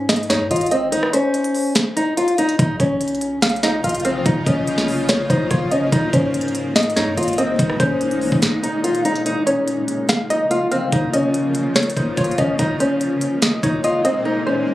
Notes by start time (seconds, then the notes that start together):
Already playing: G#2
0.09 D#5, snare, closed hi-hat
0.16 closed hi-hat
0.23 closed hi-hat
0.30 C2 D#4 C#5, snare, closed hi-hat
0.40 G#2
0.51 G#1 F4 D#5, closed hi-hat
0.56 closed hi-hat
0.61 closed hi-hat
0.66 closed hi-hat
0.71 C4 D#5, closed hi-hat
0.92 D#4, closed hi-hat
1.03 cross-stick
1.13 C#4 C5, closed hi-hat
1.34 closed hi-hat
1.44 closed hi-hat
1.55 open hi-hat
1.75 snare, closed hi-hat
1.97 D#4, closed hi-hat
2.17 F4, closed hi-hat
2.28 closed hi-hat
2.38 D#4, closed hi-hat
2.49 closed hi-hat
2.59 A#1 C#3 F3 A#3 D#4 F4, kick, closed hi-hat
2.79 A#1 C#4 C#5, kick, closed hi-hat
3.01 closed hi-hat
3.08 closed hi-hat
3.15 closed hi-hat
3.21 closed hi-hat
3.42 F5, snare, closed hi-hat
3.49 closed hi-hat
3.56 closed hi-hat
3.63 D#4 D#5, snare, closed hi-hat
3.84 A#1 F4 F5, closed hi-hat
3.89 closed hi-hat
3.95 closed hi-hat
4.00 closed hi-hat
4.05 C4 F5, closed hi-hat
4.26 A#1 D#4, kick, closed hi-hat
4.46 A#1 C#4 D#5, kick, closed hi-hat
4.67 closed hi-hat
4.78 snare
4.88 open hi-hat
5.09 C#5, snare, closed hi-hat
5.30 A#1 D#4 C5, kick, closed hi-hat
5.50 A#1 F4 C#5, kick, closed hi-hat
5.71 C#4 D#5, closed hi-hat
5.92 G#1 A#2 G#3 D#4, kick, closed hi-hat
6.13 G#2 C#4 C5, kick, closed hi-hat
6.34 closed hi-hat
6.41 closed hi-hat
6.48 closed hi-hat
6.55 closed hi-hat
6.76 D#5, snare, closed hi-hat
6.83 closed hi-hat
6.90 closed hi-hat
6.96 C2 D#4 C#5, snare, closed hi-hat
7.07 G#2
7.17 G#1 F4 D#5, closed hi-hat
7.23 closed hi-hat
7.28 closed hi-hat
7.33 closed hi-hat
7.38 C4 D#5, closed hi-hat
7.59 G#1 D#4, kick, closed hi-hat
7.70 cross-stick
7.80 G#1 C#4 C5, kick, closed hi-hat
8.01 closed hi-hat
8.11 closed hi-hat
8.21 A#1, open hi-hat
8.32 G#1, kick
8.42 snare, closed hi-hat
8.63 D#4, closed hi-hat
8.84 F4, closed hi-hat
8.95 closed hi-hat
9.05 D#4, closed hi-hat
9.15 closed hi-hat
9.26 C#3 F3 A#3 D#4 F4, closed hi-hat
9.46 C#4 C#5, closed hi-hat
9.68 closed hi-hat
9.88 closed hi-hat
10.09 F5, snare, closed hi-hat
10.30 D#4 D#5, closed hi-hat
10.51 F4 F5, closed hi-hat
10.72 C4 F5, closed hi-hat
10.92 D#4, kick, closed hi-hat
11.13 C#4 D#5, closed hi-hat
11.34 closed hi-hat
11.55 closed hi-hat
11.76 C#5, snare, closed hi-hat
11.83 closed hi-hat
11.90 closed hi-hat
11.97 D#4 C5, kick, closed hi-hat
12.17 F4 C#5, kick, closed hi-hat
12.24 closed hi-hat
12.31 closed hi-hat
12.38 C#4 D#5, kick, closed hi-hat
12.59 A#2 G#3 A#3 D#4, kick, closed hi-hat
12.80 C#4 C5, closed hi-hat
13.01 closed hi-hat
13.21 closed hi-hat
13.42 D#5, snare, closed hi-hat
13.63 D#4 C#5, kick, closed hi-hat
13.84 F4 D#5, closed hi-hat
14.04 C4 D#5, closed hi-hat
14.25 D#4
14.47 C#4 C5